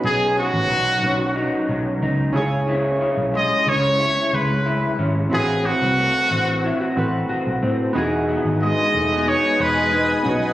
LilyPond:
<<
  \new Staff \with { instrumentName = "Ambient pad" } { \time 4/4 \key e \major \tempo 4 = 91 << { r1 | r1 | r1 | <dis'' gis'' dis'''>2.~ <dis'' gis'' dis'''>8 <dis'' fis'' cis'''>8 | } \\ { r1 | r1 | r1 | b'1 | } >> }
  \new Staff \with { instrumentName = "Trumpet" } { \time 4/4 \key e \major gis'8 fis'2 r4. | r4 dis''8 cis''4 b'4 r8 | gis'8 fis'2 r4. | r4 dis''4 cis''8 b'4 r8 | }
  \new Staff \with { instrumentName = "Synth keys" } { \time 4/4 \key e \major <cis' dis' fis' b'>2.~ <cis' dis' fis' b'>8 <cis' e' gis' cis''>8~ | <cis' e' gis' cis''>2.~ <cis' e' gis' cis''>8 r8 | <c' e' fis' b'>2~ <c' e' fis' b'>8 <c' e' fis' b'>4. | <b dis' fis' gis'>2.~ <b dis' fis' gis'>8 <b cis' dis' fis'>8 | }
  \new Staff \with { instrumentName = "Clean electric guitar" } { \time 4/4 \key e \major <b, dis'>8 cis'8 fis8 cis'8 dis'8 fis8 dis'8 cis8 | <cis e'>8 cis'8 gis8 cis'8 e'8 gis8 e'8 cis'8 | <a, fis'>8 c'8 a8 c'8 e'16 fis'16 a8 fis'8 c'8 | <e dis'>8 b8 gis8 a16 b16 dis'8 gis8 dis'8 b,8 | }
  \new Staff \with { instrumentName = "Fingered electric bass" } { \clef bass \time 4/4 \key e \major b,,8. a,,16 b,,8 b,,8. r16 b,,8 cis,8 cis,8~ | cis,8. b,,8 r16 cis,8. r16 cis,4 gis,,8 | a,,8. c,8 r16 a,,8. r16 a,,8 r16 b,,16 a,8 | e,,8. gis,,8 r16 e,,8. r16 e,,4 b,,8 | }
>>